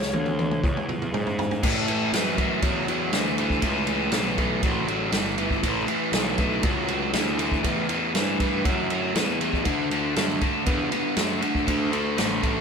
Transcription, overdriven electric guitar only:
1.64 A2 E3
1.89 A2 E3
2.14 A2 E3
2.38 A2 E3
2.62 A2 F#3
2.89 A2 F#3
3.13 A2 E3
3.38 A2 E3
3.63 A2 E3
3.88 A2 E3
4.13 A2 E3
4.37 A2 E3
4.63 A2 F#3
4.88 A2 F#3
5.12 A2 E3
5.38 A2 E3
5.63 A2 E3
5.88 A2 E3
6.12 A2 E3
6.38 A2 E3
6.63 A2 F#3
6.87 A2 F#3
7.14 A2 E3
7.38 A2 E3
7.63 A2 E3
7.89 A2 E3
8.15 A2 E3
8.40 A2 E3
8.64 A2 F#3
8.90 A2 F#3
9.15 A2 E3
9.41 A2 E3
9.65 D3 A3
9.92 D3 A3
10.16 D3 A3
10.41 D3 A3
10.66 D3 B3
10.92 D3 B3
11.17 D3 A3
11.41 D3 A3
11.66 D3 A3
11.91 D3 A3
12.17 D3 A3
12.42 D3 A3

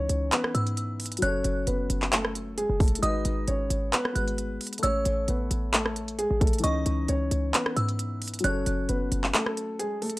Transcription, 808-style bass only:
0.09 C#2
0.55 G#2
1.22 F#1
1.45 F#1
1.67 F#1
1.90 F#1
2.70 F#1
3.03 G#1
3.25 G#1
3.48 G#1
3.70 G#1
4.16 G#1
4.83 A1
5.06 A1
5.28 A1
5.51 A1
6.31 A1
6.64 C#2
6.86 C#2
7.09 C#2
7.31 C#2
7.76 G#2
8.44 F#1
8.67 F#1
8.89 F#1
9.12 F#1

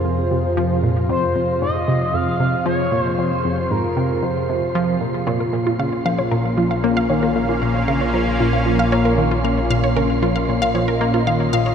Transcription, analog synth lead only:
Already playing: C5
1.10 C5
1.62 D#5
2.14 F5
2.66 C#5
3.02 C5
3.18 C5
3.71 A#4
4.23 C5

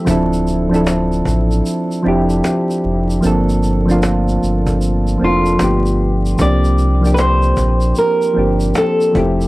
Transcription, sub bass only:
0.07 D1
1.26 A1
2.06 F1
2.85 F1
3.24 G1
4.43 G1
5.21 F1
5.61 G1
6.39 C2
7.57 A#1
8.37 G1
9.15 F1

